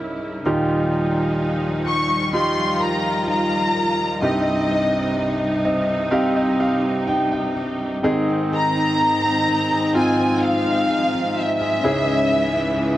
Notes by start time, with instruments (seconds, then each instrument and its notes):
Already playing: grand piano C#2 G#2 C#4 E4 A#4, string section C#3 G3 E4
0.45 grand piano D#2 A#2 D#4 F4 G4, steel-string acoustic guitar D#3, string section F3 D#4
0.92 steel-string acoustic guitar G3
1.39 steel-string acoustic guitar D#4
1.86 steel-string acoustic guitar G3, violin section C#6
2.33 steel-string acoustic guitar D#4, grand piano D#4 F4 G4, string section F4, violin section C6
2.80 steel-string acoustic guitar A#4, violin section A#5
3.28 steel-string acoustic guitar D#4, violin section A#5
3.75 steel-string acoustic guitar A#4
4.22 grand piano C2 G2 C4 D#4 G4, steel-string acoustic guitar C3, string section C3 D#4, violin section D#5
4.69 steel-string acoustic guitar C4
5.17 steel-string acoustic guitar D#4
5.65 steel-string acoustic guitar C4, grand piano D#5
6.11 grand piano C4 D#4 G4 F5, steel-string acoustic guitar D#4
6.36 grand piano D#5
6.60 steel-string acoustic guitar G4, grand piano F5
7.08 steel-string acoustic guitar D#4, grand piano G5
7.32 grand piano G5
7.57 steel-string acoustic guitar G4
8.03 grand piano G#2 D#3 C4 D#4 G#4, string section G#2 D#3 C4, steel-string acoustic guitar G#2, french horn section D#4
8.29 steel-string acoustic guitar C4
8.52 steel-string acoustic guitar G#4, violin section A#5
8.77 steel-string acoustic guitar D#4
9.01 steel-string acoustic guitar G#4
9.25 steel-string acoustic guitar C4
9.48 steel-string acoustic guitar D#4
9.72 steel-string acoustic guitar G#4
9.94 steel-string acoustic guitar G#2, string section F3, grand piano C4 F4, violin section G#5
10.19 steel-string acoustic guitar C4
10.43 steel-string acoustic guitar G#4, violin section F5
10.66 steel-string acoustic guitar D#4
10.90 steel-string acoustic guitar G#4
11.15 steel-string acoustic guitar C4
11.38 violin section E5
11.61 steel-string acoustic guitar G#4
11.82 grand piano C#2 G#2 C#4 E4 G#4, steel-string acoustic guitar C#3, string section C#3 E3 G#3, french horn section C#4
12.07 steel-string acoustic guitar C#4
12.31 steel-string acoustic guitar G#4
12.55 steel-string acoustic guitar E4
12.77 french horn section E4, steel-string acoustic guitar G#4